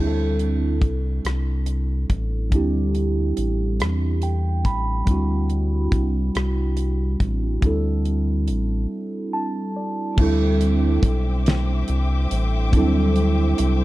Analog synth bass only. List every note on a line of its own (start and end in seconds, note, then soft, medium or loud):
0.00 0.84 D2 medium
0.82 1.20 C2 medium
1.25 2.06 C2 medium
2.10 2.54 A1 medium
2.52 3.33 D2 medium
3.38 3.82 A1 medium
3.81 4.67 E2 medium
4.65 5.04 A1 medium
5.08 5.89 D2 loud
5.93 6.31 C2 medium
6.36 7.16 C2 medium
7.21 7.59 A1 medium
7.63 8.50 D2 medium
8.49 8.87 A1 medium
10.18 10.99 D2 loud
11.03 11.84 B1 medium
11.89 12.27 C2 loud
12.31 12.75 A1 medium
12.74 13.54 D2 loud
13.59 13.84 C2 medium